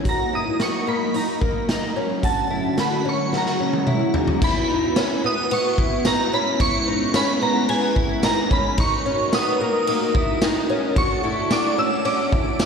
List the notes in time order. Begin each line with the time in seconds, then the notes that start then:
0.05 F#3 A#3 D#4 F#4 A#5, kick, closed hi-hat
0.33 E4 D#6
0.60 F#4 C#6, snare, closed hi-hat
0.87 A#3 B5
1.14 D#4 A#5, closed hi-hat
1.41 A#3, kick
1.69 D#4, snare, closed hi-hat
1.96 C#4
2.22 D3 A3 C#4 F#4 A5, kick, closed hi-hat
2.50 E4
2.78 F#4 B5, snare, closed hi-hat
3.05 C#4 C#6
3.31 C#3 G#3 A#3 F#4, snare
3.37 A#5
3.46 snare
3.60 C#4
3.73 high tom
3.87 E4, mid tom
4.14 D#4, floor tom
4.27 floor tom
4.40 B3 E4 F#4 B5, kick, crash
4.70 D#4
4.96 C#4, snare, ride, tambourine
5.24 B3 D#6
5.51 B3 C#6, ride
5.78 E4, kick
6.05 D#4 A#5, snare, ride, tambourine
6.33 C#4 B5
6.59 G#3 C#4 E4 C#6, kick, ride
6.87 D#4
7.14 C#4 B5, snare, ride, tambourine
7.41 B3 A#5
7.69 B3 G#5, ride
7.96 E4, kick
8.23 D#4 A#5, snare, ride, tambourine
8.51 C#4 B5, kick
8.77 D#4 F#4 A#4 C#6, kick, ride
9.05 C#4
9.33 B3 D#6, snare, ride, tambourine
9.61 A#3
9.87 A#3 D#6, ride
10.15 E4, kick
10.41 D#4, snare, ride, tambourine
10.69 C#4
10.94 A3 D4 F#4 A4 D5 C#6, kick, ride
11.24 E4
11.51 D4 D6, snare, ride, tambourine
11.78 C#4 E6
12.05 C#4 D6, ride
12.32 E4, kick
12.59 D4, snare, ride, tambourine